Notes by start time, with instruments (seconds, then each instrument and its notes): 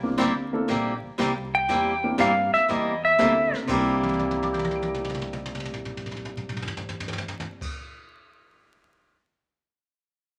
Already playing: upright bass C2
0.03 upright piano A#3 C4 D4 E4 G4
0.18 upright bass D2, steel-string acoustic guitar C3 G3 A#3 E4 G4, snare, hi-hat pedal
0.53 upright piano A#3 C4 D4 E4 A4
0.68 upright bass A#1, steel-string acoustic guitar C3 G3 A#3 E4 G4, brush sweep, snare
1.04 muted upright bass stroke
1.18 upright bass C2, steel-string acoustic guitar C3 G3 A#3 E4 G4, snare, hi-hat pedal
1.55 pedal steel guitar G5
1.69 upright bass E2, steel-string acoustic guitar C3 G3 A#3 E4 G4, brush sweep, snare
2.04 upright piano A#3 C4 D4 E4 G4
2.18 upright bass G2, steel-string acoustic guitar C3 G3 A#3 E4 G4, pedal steel guitar F5, snare, hi-hat pedal
2.54 pedal steel guitar E5, muted upright bass stroke, snare
2.68 upright bass E2, steel-string acoustic guitar C3 G3 A#3 E4 G4, pedal steel guitar D#5, brush sweep, snare
3.05 pedal steel guitar E5
3.18 upright bass D2, steel-string acoustic guitar C3 G3 A#3 E4 G4, upright piano A#3 C4 D4 E4 A4, snare, hi-hat pedal
3.53 muted upright bass stroke, snare
3.63 upright piano C3 C4
3.67 upright bass C2, steel-string acoustic guitar C3 G3 A#3 E4 G4, upright piano D4, kick, crash
3.72 upright piano E4 A#4
4.03 high tom
4.09 high tom
4.14 high tom
4.19 upright piano D5, high tom
4.26 upright piano G5
4.31 upright piano A#5, high tom
4.43 upright piano D6, high tom
4.53 upright piano G6, high tom
4.59 high tom
4.64 upright piano A#6, high tom
4.71 high tom
4.76 upright piano D7
4.83 high tom
4.94 mid tom
5.04 mid tom
5.09 mid tom
5.14 mid tom
5.21 mid tom
5.33 mid tom
5.46 mid tom
5.55 mid tom
5.60 mid tom
5.65 mid tom
5.74 mid tom
5.85 mid tom
5.97 mid tom
6.06 mid tom
6.11 mid tom
6.16 mid tom
6.25 mid tom
6.37 mid tom
6.49 mid tom
6.57 mid tom
6.62 floor tom
6.67 floor tom
6.77 floor tom
6.89 floor tom
7.00 floor tom
7.08 floor tom
7.13 floor tom
7.18 floor tom
7.28 floor tom
7.40 floor tom
7.61 kick, crash